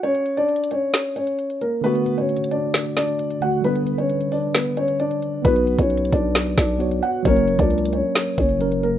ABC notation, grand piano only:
X:1
M:4/4
L:1/16
Q:1/4=133
K:Bm
V:1 name="Grand piano"
[Cc]3 [Dd]3 [Cc]4 [Cc]4 [^A,^A]2 | [B,B]3 [Cc]3 [Dd]4 [Dd]4 [Ff]2 | [B,B]3 [Cc]3 [Dd]2 [B,B]2 [Cc]2 [Dd]4 | [B,B]3 [Cc]3 [Dd]4 [Dd]4 [Ff]2 |
[Cc]3 [Dd]3 [Cc]4 [Cc]4 [^A,^A]2 |]